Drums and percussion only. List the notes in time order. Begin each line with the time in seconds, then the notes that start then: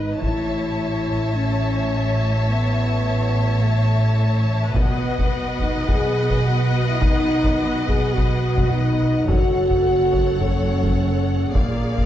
0.22 taiko
1.08 taiko
4.75 taiko
5.19 taiko
5.60 taiko
5.88 taiko
6.30 taiko
7.01 taiko
7.44 taiko
7.87 taiko
8.16 taiko
8.58 taiko
9.28 taiko
9.71 taiko
10.13 taiko
10.41 taiko
10.84 taiko
11.55 taiko
11.98 taiko